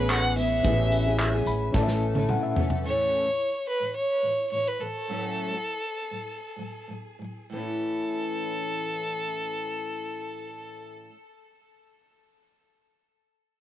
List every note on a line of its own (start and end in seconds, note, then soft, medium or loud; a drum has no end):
0.00 0.60 A1 loud
0.00 0.38 A2 medium
0.00 0.35 E3 medium
0.00 0.32 B3 medium
0.00 0.37 B3 medium
0.00 0.37 C#4 medium
0.00 0.33 G#4 medium
0.00 0.37 G#4 medium
0.00 0.12 B4 medium
0.00 0.34 E5 medium
0.10 0.37 F#5 loud
0.10 clap loud
0.37 0.63 E3 medium
0.37 0.63 B3 medium
0.37 0.64 C#4 medium
0.37 0.64 G#4 medium
0.37 1.43 E5 medium
0.37 tambourine medium
0.63 1.43 A1 loud
0.63 1.05 A2 medium
0.63 1.05 E3 medium
0.63 1.06 B3 medium
0.63 1.71 C#4 medium
0.63 1.05 C#4 medium
0.63 1.72 G#4 medium
0.63 1.04 G#4 medium
0.63 1.72 B4 medium
0.63 kick loud
0.68 1.73 E5 medium
0.92 tambourine medium
1.05 1.33 B3 medium
1.05 1.32 C#4 medium
1.05 1.31 G#4 medium
1.20 clap loud
1.32 1.75 B3 soft
1.32 1.74 C#4 medium
1.32 1.73 G#4 medium
1.46 1.71 A1 medium
1.46 1.72 B5 medium
1.46 tambourine medium
1.73 2.25 A1 loud
1.73 2.15 A2 medium
1.73 2.15 E3 medium
1.73 2.15 A3 medium
1.73 2.81 C#4 medium
1.73 2.15 C#4 loud
1.73 2.81 E4 medium
1.73 2.82 A4 medium
1.73 2.14 A4 loud
1.73 2.25 A5 medium
1.73 kick loud
1.73 snare medium
1.77 1.82 D5 medium
1.83 2.42 E5 medium
1.88 snare medium
2.15 2.57 A2 medium
2.15 2.54 E3 medium
2.15 2.56 A3 medium
2.15 2.56 C#4 medium
2.15 2.56 A4 medium
2.15 high tom medium
2.29 2.42 F#5 medium
2.29 mid tom medium
2.43 2.81 E5 medium
2.56 2.83 E3 medium
2.56 2.83 A3 medium
2.56 2.84 C#4 medium
2.56 2.84 A4 medium
2.56 floor tom loud
2.70 floor tom medium
2.84 3.23 A2 medium
2.84 3.25 E3 medium
2.84 3.25 A3 medium
2.84 3.26 C#4 medium
2.84 3.26 A4 medium
2.84 3.64 C#5 loud
3.25 3.47 A2 soft
3.25 3.48 E3 soft
3.69 3.94 B4 medium
3.80 4.02 A2 soft
3.80 4.04 E3 soft
3.96 4.48 C#5 medium
4.22 4.45 A2 medium
4.22 4.46 E3 medium
4.52 4.74 A2 medium
4.52 4.75 E3 medium
4.52 4.69 C#5 medium
4.67 4.82 B4 medium
4.79 5.02 A2 soft
4.79 5.04 E3 medium
4.79 6.89 A4 medium
5.08 5.50 A2 medium
5.08 5.52 F#3 medium
5.08 5.52 A3 medium
5.08 5.53 C#4 medium
5.08 5.53 F#4 medium
5.51 5.75 A2 soft
5.51 5.76 F#3 soft
6.11 6.35 A2 soft
6.11 6.36 F#3 soft
6.56 6.82 A2 medium
6.56 6.83 F#3 medium
6.88 7.13 A2 soft
6.88 7.15 F#3 medium
7.19 7.45 A2 soft
7.19 7.47 F#3 medium
7.50 11.07 A2 medium
7.50 11.09 E3 medium
7.50 10.89 A4 medium
7.54 11.11 A3 medium
7.54 11.12 C#4 medium
7.54 11.14 E4 medium